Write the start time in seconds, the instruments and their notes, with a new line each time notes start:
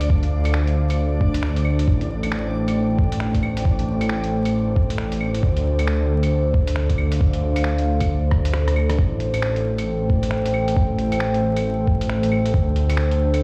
Already playing: detuned saw bass D2, analog synth pad D4 A4 C5 F5, synth texture D4 D5
0.01 closed hi-hat
0.10 kick
0.23 closed hi-hat
0.45 closed hi-hat, claves
0.54 finger snap
0.67 closed hi-hat
0.90 closed hi-hat, claves
1.21 kick
1.34 closed hi-hat
1.43 finger snap
1.56 closed hi-hat
1.65 claves
1.79 closed hi-hat
1.88 detuned saw bass A1, analog synth pad A3, kick
2.01 closed hi-hat
2.23 analog synth pad G5, closed hi-hat, claves
2.32 finger snap
2.68 closed hi-hat, claves
2.99 kick
3.12 closed hi-hat
3.20 finger snap
3.35 kick, closed hi-hat
3.43 claves
3.57 closed hi-hat
3.65 kick
3.79 closed hi-hat
4.01 closed hi-hat, claves
4.09 finger snap
4.24 closed hi-hat
4.45 closed hi-hat, claves
4.76 kick
4.90 closed hi-hat
4.98 finger snap
5.12 closed hi-hat
5.21 claves
5.34 closed hi-hat
5.43 detuned saw bass D2, analog synth pad D4, kick
5.57 closed hi-hat
5.79 closed hi-hat, claves
5.87 finger snap
6.23 closed hi-hat, claves
6.54 kick
6.67 closed hi-hat
6.76 finger snap
6.86 analog synth pad F5, closed hi-hat
6.90 kick
6.98 claves
7.12 closed hi-hat
7.21 kick
7.33 closed hi-hat
7.56 closed hi-hat, claves
7.64 finger snap
7.78 closed hi-hat
8.01 kick, closed hi-hat, claves
8.31 kick, cross-stick
8.45 closed hi-hat
8.54 finger snap, cross-stick
8.68 cross-stick, closed hi-hat
8.76 claves
8.90 cross-stick, closed hi-hat
8.99 detuned saw bass A1, analog synth pad A3, kick
9.20 closed hi-hat
9.34 closed hi-hat, claves
9.42 finger snap
9.56 analog synth pad G5, closed hi-hat
9.78 closed hi-hat, claves
10.10 kick
10.23 closed hi-hat
10.31 finger snap
10.46 closed hi-hat
10.54 claves
10.68 closed hi-hat
10.76 kick
10.99 closed hi-hat
11.12 closed hi-hat, claves
11.20 finger snap
11.34 closed hi-hat
11.57 closed hi-hat, claves
11.87 kick
12.01 closed hi-hat
12.10 finger snap
12.23 closed hi-hat
12.32 claves
12.46 closed hi-hat
12.54 detuned saw bass D2, analog synth pad D4, kick
12.76 closed hi-hat
12.90 closed hi-hat, claves
12.97 finger snap
13.11 closed hi-hat
13.34 closed hi-hat, claves